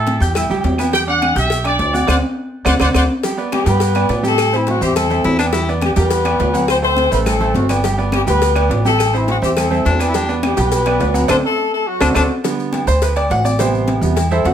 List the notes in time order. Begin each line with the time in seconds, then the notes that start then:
Already playing: A2 E4 A4 E5 E6
0.07 cowbell, high conga, low timbale, low agogo, maracas
0.20 E2 G4 G5 G6, maracas
0.35 E4 E5 E6, cowbell, high conga, low conga, low agogo, claves, maracas
0.50 D2 G3 G4 G5, high conga, low conga, low agogo, maracas
0.64 E2, cowbell, high conga, low timbale, maracas
0.78 B3 B4 B5, cowbell, high conga, low agogo, claves, maracas
0.93 G3 G4 G5, cowbell, high conga, low agogo, maracas
1.07 D4 D5 F#5 D6, high conga
1.22 cowbell, high conga, low timbale, low agogo, claves, maracas
1.35 B1 G4 E5 G5 G6, cowbell, high conga, maracas
1.50 cowbell, high conga, low agogo, maracas
1.64 D4 D5 D6, cowbell, high conga, low agogo, claves, maracas
1.79 D2, cowbell, high conga, low timbale, maracas
1.93 F#4 D5 F#5 F#6, high conga, low agogo, maracas
2.07 D2 C5 D5 F#5, cowbell, high conga, high timbale, claves, maracas
2.65 D2 C5 D5 F#5, cowbell, high conga, high timbale, claves, maracas
2.80 D2 C5 D5 F#5, cowbell, high conga, high timbale, claves, maracas
2.94 D2 C5 D5 F#5, cowbell, high conga, high timbale, claves, maracas
3.23 G3 G4 G5, cowbell, high conga, low agogo, maracas
3.37 B3 B4 D5, high conga, maracas
3.52 G3 G4, cowbell, high conga, low timbale, low agogo, claves, maracas
3.66 G2 G3 B3 G4 B4 G5, cowbell, maracas
3.80 cowbell, low agogo, maracas
3.95 B3 B4 D5, cowbell, high conga, low agogo, claves, maracas
4.09 A2 B3 B4 D5, cowbell, high conga, low timbale, maracas
4.23 G3 A3 G4 G5, high conga, low agogo, maracas
4.27 A4
4.38 cowbell, high conga, low agogo, claves, maracas
4.52 E3 C4 E4 C5 E5, high conga, maracas
4.67 F#3 F#4, cowbell, high conga, low timbale, low agogo, maracas
4.81 E2 G3 C4 G4 C5 E5, maracas
4.96 A3 A4, cowbell, high conga, low conga, low agogo, claves, maracas
5.10 C4 C5 E5, high conga, low conga, low agogo, maracas
5.24 E2 E4, cowbell, high conga, low timbale, maracas
5.38 B3 D4 B4 D5, cowbell, low agogo, claves, maracas
5.52 G3 E4 G4 G5, cowbell, low agogo, maracas
5.68 B3 B4 D5, high conga, maracas
5.81 G3 G4, cowbell, high conga, low timbale, low agogo, claves, maracas
5.96 E2 G3 B3 G4 B4 G5, cowbell, maracas
6.11 cowbell, high conga, low agogo, maracas
6.24 B3 B4 D5, cowbell, high conga, low agogo, claves, maracas
6.39 D2 B3 B4 D5, cowbell, high conga, low timbale, maracas
6.53 F#3 F#4 F#5, high conga, low agogo, maracas
6.68 C4 C5, cowbell, low agogo, claves, maracas
6.82 A3 C4 A4 C5, maracas
6.97 cowbell, high conga, low timbale, low agogo, maracas
7.11 A1 A3 B3 A4 B4 C5, maracas
7.26 A3 A4, cowbell, high conga, low conga, low agogo, claves, maracas
7.40 A3 A4 C5, high conga, low conga, low agogo, maracas
7.54 G1 F#3 F#4, cowbell, high conga, low timbale, maracas
7.69 B3 B4 D5, cowbell, high conga, low agogo, claves, maracas
7.84 G3 G4 G5, cowbell, high conga, low agogo, maracas
7.98 B3 B4 D5, high conga, maracas
8.12 G3 G4, cowbell, high conga, low timbale, low agogo, claves, maracas
8.27 D2 G3 B3 G4 B4 G5, cowbell, high conga, maracas
8.42 cowbell, high conga, low agogo, maracas
8.55 B3 B4 D5, cowbell, high conga, low agogo, claves, maracas
8.69 A1 B3 B4 D5, cowbell, high conga, low timbale, maracas
8.85 G3 A3 G4 A4 G5, high conga, low agogo, maracas
8.99 cowbell, high conga, low agogo, claves, maracas
9.13 E3 C4 E4 C5 E5, high conga, maracas
9.28 F#3 F#4, cowbell, high conga, low timbale, low agogo, maracas
9.42 E2 G3 C4 G4 C5 E5, maracas
9.57 A3 A4, cowbell, high conga, low conga, low agogo, claves, maracas
9.71 C4 C5 E5, high conga, low conga, low agogo, maracas
9.85 E2 D4, cowbell, high conga, low timbale, maracas
9.99 B3 B4 D5, cowbell, low agogo, claves, maracas
10.09 E4
10.14 G3 D4 G4 G5, cowbell, high conga, low agogo, maracas
10.28 B3 B4 D5, high conga, maracas
10.43 G3 G4, cowbell, high conga, low timbale, low agogo, claves, maracas
10.57 B1 G3 B3 G4 B4 G5, cowbell, maracas
10.72 cowbell, high conga, low agogo, maracas
10.86 B3 B4 D5, cowbell, high conga, low agogo, claves
11.00 D2 B3 B4 D5, cowbell, high conga, low timbale, maracas
11.14 F#3 F#4 F#5, high conga, low agogo, maracas
11.28 D2 C4 D4 A4 C5 D5, cowbell, high conga, high timbale, claves, maracas
11.44 A3 A4
11.73 A3 A4
11.87 F#3 F#4
12.00 D2 D4 A4 C5 D5, cowbell, high conga, high timbale, claves, maracas
12.14 D2 F#3 D4 F#4 A4 C5 D5, cowbell, high conga, high timbale, claves, maracas
12.43 D3 G3 B3, cowbell, low agogo, maracas
12.58 high conga, maracas
12.73 cowbell, high conga, low timbale, low agogo, maracas
12.87 D2 C5, cowbell, high conga, maracas
13.02 B4, cowbell, high conga, low agogo, maracas
13.16 D5, cowbell, high conga, low agogo, maracas
13.30 A1 F#5, cowbell, high conga, low timbale, maracas
13.44 D5, high conga, low agogo, maracas
13.59 C3 G3 B3 C5, cowbell, low agogo, maracas
13.73 high conga, maracas
13.88 cowbell, high conga, low timbale, low agogo, maracas
14.01 E2 C3 G3 B3, maracas
14.16 cowbell, high conga, low conga, low agogo, maracas
14.31 E4 A4 C5 E5, high conga, low conga, low agogo, maracas
14.45 E2 F#4 F#5, cowbell, high conga, low timbale, maracas